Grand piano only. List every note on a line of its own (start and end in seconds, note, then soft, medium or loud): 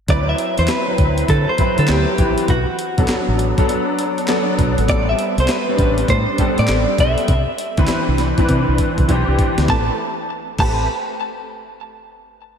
0.08 0.70 F#3 medium
0.08 0.70 C4 medium
0.08 0.71 E4 medium
0.08 0.71 B4 medium
0.88 1.49 F#3 medium
0.88 1.49 C4 medium
0.88 1.49 E4 medium
0.88 1.49 B4 medium
1.58 2.11 F#3 medium
1.58 2.11 C4 medium
1.58 2.11 E4 medium
1.58 2.11 B4 medium
2.18 2.48 E3 medium
2.18 2.49 C4 medium
2.18 2.49 E4 medium
2.18 2.49 B4 medium
2.97 3.44 F#3 medium
2.97 3.44 B3 medium
2.97 3.44 D4 medium
2.97 3.44 A4 medium
3.57 4.18 F#3 medium
3.57 4.19 B3 medium
3.57 4.19 D4 medium
3.57 4.19 A4 loud
4.28 4.80 F#3 medium
4.28 4.81 B3 medium
4.28 4.81 D4 medium
4.28 4.81 A4 loud
4.88 5.50 G3 medium
4.88 5.50 B3 medium
4.88 5.50 C4 medium
4.88 5.51 A4 medium
5.68 6.29 G3 medium
5.68 6.29 B3 medium
5.68 6.29 C4 medium
5.68 5.73 C#4 medium
5.75 6.33 D4 medium
6.38 6.91 G3 medium
6.38 6.91 B3 medium
6.38 6.91 C4 medium
6.38 6.91 A4 loud
6.98 7.28 G3 medium
6.98 7.29 B3 medium
6.98 7.29 C4 medium
6.98 7.29 A4 medium
7.78 8.24 E3 medium
7.78 8.24 C4 medium
7.78 8.24 D4 medium
7.78 8.24 B4 loud
8.38 8.99 E3 loud
8.38 8.99 C4 medium
8.38 8.99 D4 medium
8.38 8.99 B4 loud
9.08 9.61 E3 medium
9.08 9.61 C4 medium
9.08 9.61 D4 medium
9.08 9.61 G4 loud
9.69 9.89 A3 medium
9.69 9.89 C4 medium
9.69 9.89 G4 medium
9.69 9.89 B4 medium
10.58 10.86 A3 medium
10.58 10.87 C4 medium
10.58 10.87 G4 medium
10.58 10.87 B4 medium